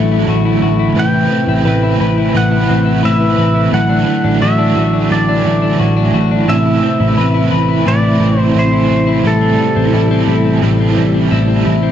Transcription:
Already playing: picked electric bass A1, overdriven electric guitar A2 D3 E3 A3 E4 F#4, clean electric guitar A2 A3 E4 F#4, tonewheel organ D3 F#3 A3 E4
0.12 clean electric guitar E4
0.28 picked electric bass A1, clean electric guitar F#4
0.45 clean electric guitar E4
0.62 picked electric bass A1, clean electric guitar F#4
0.79 clean electric guitar E4
0.95 picked electric bass A1, overdriven electric guitar A2 E3 A3 C4 E4 B4, clean electric guitar A2, tonewheel organ C3 B4
0.99 pedal steel guitar G5
1.14 clean electric guitar E4
1.31 clean electric guitar C4
1.48 picked electric bass A1, clean electric guitar E4
1.64 picked electric bass A1, overdriven electric guitar A3 C4 E4, clean electric guitar B4
1.69 overdriven electric guitar B4
1.83 clean electric guitar E4
2.00 picked electric bass A1, clean electric guitar B4
2.18 clean electric guitar E4
2.33 picked electric bass A1, overdriven electric guitar A2 E3 A3 C4 E4 B4, clean electric guitar A2, pedal steel guitar F#5
2.51 clean electric guitar E4
2.69 picked electric bass A1, clean electric guitar C4
2.86 clean electric guitar E4
3.03 picked electric bass A1, overdriven electric guitar A3 C4 E4, clean electric guitar B4, pedal steel guitar E5
3.07 overdriven electric guitar B4
3.20 clean electric guitar E4
3.38 picked electric bass A1, clean electric guitar B4
3.55 clean electric guitar E4
3.72 picked electric bass A1, clean electric guitar A2, overdriven electric guitar A2 D3 E3 A3 E4 F#4, tonewheel organ D3 F#3, pedal steel guitar F#5
3.89 clean electric guitar D4
4.07 clean electric guitar A3
4.24 picked electric bass A1, clean electric guitar D4
4.41 picked electric bass A1, overdriven electric guitar E3 A3 E4, clean electric guitar F#4, pedal steel guitar E5
4.46 overdriven electric guitar F#4
4.58 clean electric guitar D4
4.76 picked electric bass A1, clean electric guitar F#4
4.93 clean electric guitar D4
5.09 picked electric bass A1, overdriven electric guitar A2 D3 E3, clean electric guitar A2, pedal steel guitar D5
5.13 overdriven electric guitar A3 E4 F#4
5.29 clean electric guitar D4
5.45 picked electric bass A1, clean electric guitar A3
5.62 clean electric guitar D4
5.79 picked electric bass A1, clean electric guitar F#4
5.97 clean electric guitar D4
6.14 picked electric bass A1, clean electric guitar F#4
6.31 clean electric guitar D4
6.48 picked electric bass A1, overdriven electric guitar A2 E3 A3 C4 E4 B4, clean electric guitar A2, tonewheel organ C3 A3 C4 E4, pedal steel guitar E5
6.66 clean electric guitar E4
6.83 clean electric guitar C4
7.00 picked electric bass A1, clean electric guitar E4
7.17 picked electric bass A1, overdriven electric guitar A3 C4 E4 B4, clean electric guitar B4
7.34 clean electric guitar E4
7.51 picked electric bass A1, clean electric guitar B4
7.68 clean electric guitar E4
7.85 picked electric bass A1, clean electric guitar A2, overdriven electric guitar A2 E3 A3 C4 E4 B4, pedal steel guitar D5
8.03 clean electric guitar E4
8.21 picked electric bass A1, clean electric guitar C4
8.38 clean electric guitar E4, pedal steel guitar C5
8.54 picked electric bass A1, overdriven electric guitar A3 C4 E4
8.59 pedal steel guitar C5
8.72 clean electric guitar E4
8.90 picked electric bass A1
9.07 clean electric guitar E4
9.24 picked electric bass A1, overdriven electric guitar A2 E3 G3 C4 E4 A4, clean electric guitar A2, tonewheel organ G3 A3, pedal steel guitar A4
9.41 clean electric guitar C4
9.59 clean electric guitar G3
9.76 picked electric bass A1, clean electric guitar C4
9.93 picked electric bass A1, overdriven electric guitar G3 C4 E4, clean electric guitar E4
9.97 overdriven electric guitar A4
10.11 clean electric guitar C4
10.28 picked electric bass A1, clean electric guitar E4
10.45 clean electric guitar C4
10.62 picked electric bass A1, overdriven electric guitar A2 E3 G3 C4 E4 A4, clean electric guitar A2
10.80 clean electric guitar C4
10.97 picked electric bass A1, clean electric guitar G3
11.14 clean electric guitar C4
11.30 picked electric bass A1, overdriven electric guitar G3 C4 E4, clean electric guitar E4
11.35 overdriven electric guitar A4
11.48 clean electric guitar C4
11.65 picked electric bass A1, clean electric guitar E4
11.83 clean electric guitar C4

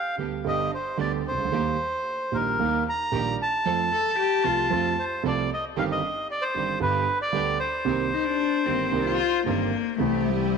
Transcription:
Already playing: bandoneon F5
0.18 grand piano D2 D3 G3 B3 G4, string section B3 D4 G4
0.45 grand piano G1 G2 D3 G3 B3 G4, string section B3 D4 G4, bandoneon D#5
0.74 bandoneon C5
0.97 grand piano D2 D3 G3 B3 G4, string section B3 D4 G4, bandoneon D5
1.28 grand piano C2, bandoneon C5
1.38 grand piano C#2
1.45 grand piano D2
1.52 grand piano D#2 D#3 G3 A#3 G4, string section A#3 D#4 G4
2.32 grand piano A#1 A#2 D#3 G3 A#3 G4, string section A#3 D#4 G4, bandoneon A#4
2.59 grand piano D#2 D#3 G3 A#3 G4, string section A#3 D#4 G4
2.89 bandoneon A#5
3.11 grand piano A#1 A#2 D#3 G3 A#3 G4, string section A#3 D#4 G4
3.42 bandoneon A5
3.65 grand piano F2 F3 A3 C4 A4, string section C4 F4 A4
3.92 cello A4
4.20 cello G4
4.44 grand piano C2 C3 F3 A3 C4 A4, string section C4 F4 A4, cello F4
4.70 grand piano F2 F3 A3 C4 A4, string section C4 F4 A4
4.99 bandoneon C5
5.23 grand piano C2 C3 F3 A3 C4 A4, string section C4 F4 A4
5.27 bandoneon D5
5.54 bandoneon D#5
5.76 grand piano G1 G2 D#3 G3 C4 G4, string section G3 C4 D#4 G4, bandoneon F5
5.91 bandoneon D#5
6.31 bandoneon D5
6.42 bandoneon C5
6.55 grand piano G1 G2 D#3 G3 C4 G4, string section G3 C4 D#4 G4
6.80 grand piano G1 G2 D3 G3 B3 G4, string section B3 D4 G4, bandoneon B4
7.22 bandoneon D5
7.33 grand piano D2 D3 G3 B3 G4, string section B3 D4 G4
7.59 bandoneon C5
7.85 grand piano C2 C3 D#3 A#3 C4 G4, string section C4 D#4 A#4
8.14 cello D#4
8.25 cello D4
8.66 grand piano G1 G2 D#3 A#3 C4 G4, cello C4, string section C4 D#4 A#4
8.92 grand piano C2 C3 D#3 A#3 C4 G4, string section C4 D#4 A#4
9.06 cello F4
9.46 grand piano G1 G2 D#3 A#3 C4 G4, cello A#3, string section C4 D#4 A#4
9.98 grand piano C2 C3 E3 G3 C4, cello A3, string section C4 E4 G4
10.02 grand piano G4
10.22 cello A3
10.28 cello G3

